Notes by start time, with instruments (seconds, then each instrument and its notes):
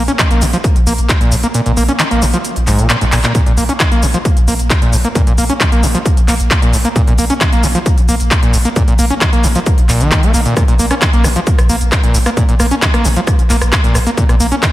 0.08 acid bass C#4, closed hi-hat, shaker
0.19 acid bass D#3, kick, clap, closed hi-hat, shaker
0.31 sub bass A#1, acid bass A#3, closed hi-hat, shaker
0.41 sub bass A#1, acid bass G#2, open hi-hat, shaker
0.53 acid bass F3, closed hi-hat, shaker
0.64 kick, closed hi-hat, shaker
0.76 sub bass A#1, closed hi-hat, shaker
0.87 sub bass A#1, acid bass A#3, open hi-hat, shaker
0.98 sub bass A#1, closed hi-hat, shaker
1.09 kick, clap, closed hi-hat, shaker
1.21 sub bass A#1, acid bass A#2, closed hi-hat, shaker
1.32 sub bass A#1, acid bass G#2, open hi-hat, shaker
1.43 acid bass A#3, closed hi-hat, shaker
1.54 acid bass A#2, closed hi-hat, shaker
1.66 sub bass A#1, acid bass A#2, closed hi-hat, shaker
1.77 sub bass A#1, acid bass A#3, open hi-hat, shaker
1.89 acid bass C#4, closed hi-hat, shaker
1.99 acid bass D#3, clap, closed hi-hat, shaker
2.11 sub bass A#1, acid bass A#3, closed hi-hat, shaker
2.22 sub bass A#1, acid bass G#2, open hi-hat, shaker
2.34 acid bass F3, closed hi-hat, shaker
2.45 closed hi-hat, shaker
2.56 sub bass A#1, closed hi-hat, shaker
2.67 sub bass A#1, acid bass G#2, clap, open hi-hat, shaker
2.79 sub bass A#1, acid bass A#2, closed hi-hat, shaker
2.90 acid bass A#2, clap, closed hi-hat, shaker
3.01 sub bass A#1, acid bass G#2, closed hi-hat, shaker
3.12 sub bass A#1, acid bass A#2, clap, open hi-hat, shaker
3.24 acid bass A#2, clap, closed hi-hat, shaker
3.35 acid bass A#2, kick, closed hi-hat, shaker
3.46 sub bass A#1, acid bass A#2, closed hi-hat, shaker
3.57 sub bass A#1, acid bass A#3, open hi-hat, shaker
3.69 acid bass C#4, closed hi-hat, shaker
3.80 acid bass D#3, kick, clap, closed hi-hat, shaker
3.91 sub bass A#1, acid bass A#3, closed hi-hat, shaker
4.02 sub bass A#1, acid bass G#2, open hi-hat, shaker
4.14 acid bass F3, closed hi-hat, shaker
4.25 kick, closed hi-hat, shaker
4.36 sub bass A#1, closed hi-hat, shaker
4.47 sub bass A#1, acid bass A#3, open hi-hat, shaker
4.59 sub bass A#1, closed hi-hat, shaker
4.70 kick, clap, closed hi-hat, shaker
4.82 sub bass A#1, acid bass A#2, closed hi-hat, shaker
4.93 sub bass A#1, acid bass G#2, open hi-hat, shaker
5.04 acid bass A#3, closed hi-hat, shaker
5.15 acid bass A#2, kick, closed hi-hat, shaker
5.27 sub bass A#1, acid bass A#2, closed hi-hat, shaker
5.38 sub bass A#1, acid bass A#3, open hi-hat, shaker
5.49 acid bass C#4, closed hi-hat, shaker
5.60 acid bass D#3, kick, clap, closed hi-hat, shaker
5.72 sub bass A#1, acid bass A#3, closed hi-hat, shaker
5.83 sub bass A#1, acid bass G#2, open hi-hat, shaker
5.95 acid bass F3, closed hi-hat, shaker
6.06 kick, closed hi-hat, shaker
6.17 sub bass A#1, closed hi-hat, shaker
6.28 sub bass A#1, acid bass A#3, clap, open hi-hat, shaker
6.39 sub bass A#1, closed hi-hat, shaker
6.51 kick, clap, closed hi-hat, shaker
6.62 sub bass A#1, acid bass A#2, closed hi-hat, shaker
6.73 sub bass A#1, acid bass G#2, open hi-hat, shaker
6.85 acid bass A#3, closed hi-hat, shaker
6.96 acid bass A#2, kick, closed hi-hat, shaker
7.07 sub bass A#1, acid bass A#2, closed hi-hat, shaker
7.18 sub bass A#1, acid bass A#3, open hi-hat, shaker
7.30 acid bass C#4, closed hi-hat, shaker
7.41 acid bass D#3, kick, clap, closed hi-hat, shaker
7.52 sub bass A#1, acid bass A#3, closed hi-hat, shaker
7.63 sub bass A#1, acid bass G#2, open hi-hat, shaker
7.75 acid bass F3, closed hi-hat, shaker
7.86 kick, closed hi-hat, shaker
7.97 sub bass A#1, closed hi-hat, shaker
8.08 sub bass A#1, acid bass A#3, open hi-hat, shaker
8.20 sub bass A#1, closed hi-hat, shaker
8.31 kick, clap, closed hi-hat, shaker
8.43 sub bass A#1, acid bass A#2, closed hi-hat, shaker
8.54 sub bass A#1, acid bass G#2, open hi-hat, shaker
8.65 acid bass A#3, closed hi-hat, shaker
8.76 acid bass A#2, kick, closed hi-hat, shaker
8.88 sub bass A#1, acid bass A#2, closed hi-hat, shaker
8.99 sub bass A#1, acid bass A#3, open hi-hat, shaker
9.10 acid bass C#4, closed hi-hat, shaker
9.21 acid bass D#3, kick, clap, closed hi-hat, shaker
9.33 sub bass A#1, acid bass A#3, closed hi-hat, shaker
9.44 sub bass A#1, acid bass G#2, open hi-hat, shaker
9.55 acid bass F3, closed hi-hat, shaker
9.66 kick, closed hi-hat, shaker
9.78 sub bass A#1, closed hi-hat, shaker
9.89 sub bass A#1, acid bass A#2, clap, open hi-hat, shaker
10.00 sub bass A#1, acid bass D#3, closed hi-hat, shaker
10.12 kick, clap, closed hi-hat, shaker
10.23 sub bass A#1, acid bass A#3, closed hi-hat, shaker
10.34 sub bass A#1, acid bass A#3, open hi-hat, shaker
10.46 acid bass A#2, closed hi-hat, shaker
10.57 acid bass A#2, kick, cross-stick, closed hi-hat, shaker
10.68 sub bass A#1, acid bass A#2, closed hi-hat, shaker
10.79 sub bass A#1, acid bass A#3, open hi-hat, shaker
10.91 acid bass C#4, cross-stick, closed hi-hat, shaker
11.02 acid bass D#3, kick, clap, closed hi-hat, shaker
11.13 sub bass A#1, acid bass A#3, closed hi-hat, shaker
11.24 sub bass A#1, acid bass G#2, cross-stick, open hi-hat, shaker
11.36 acid bass F3, closed hi-hat, shaker
11.47 kick, closed hi-hat, shaker
11.58 sub bass A#1, cross-stick, closed hi-hat, shaker
11.69 sub bass A#1, acid bass A#3, open hi-hat, shaker
11.81 sub bass A#1, closed hi-hat, shaker
11.92 kick, cross-stick, clap, closed hi-hat, shaker
12.03 sub bass A#1, acid bass A#2, closed hi-hat, shaker
12.14 sub bass A#1, acid bass G#2, open hi-hat, shaker
12.26 acid bass A#3, cross-stick, closed hi-hat, shaker
12.37 acid bass A#2, kick, closed hi-hat, shaker
12.49 sub bass A#1, acid bass A#2, closed hi-hat, shaker
12.60 sub bass A#1, acid bass A#3, cross-stick, open hi-hat, shaker
12.71 acid bass C#4, closed hi-hat, shaker
12.82 acid bass D#3, kick, clap, closed hi-hat, shaker
12.94 sub bass A#1, acid bass A#3, cross-stick, closed hi-hat, shaker
13.05 sub bass A#1, acid bass G#2, open hi-hat, shaker
13.16 acid bass F3, closed hi-hat, shaker
13.27 kick, cross-stick, closed hi-hat, shaker
13.39 sub bass A#1, closed hi-hat, shaker
13.50 sub bass A#1, acid bass A#3, clap, open hi-hat, shaker
13.61 sub bass A#1, cross-stick, closed hi-hat, shaker
13.72 kick, clap, closed hi-hat, shaker
13.84 sub bass A#1, acid bass A#2, closed hi-hat, shaker
13.95 sub bass A#1, acid bass G#2, cross-stick, open hi-hat, shaker
14.07 acid bass A#3, closed hi-hat, shaker
14.17 acid bass A#2, kick, closed hi-hat, shaker
14.29 sub bass A#1, acid bass A#2, cross-stick, closed hi-hat, shaker
14.40 sub bass A#1, acid bass A#3, open hi-hat, shaker
14.52 acid bass C#4, closed hi-hat, shaker
14.63 acid bass D#3, kick, cross-stick, clap, closed hi-hat, shaker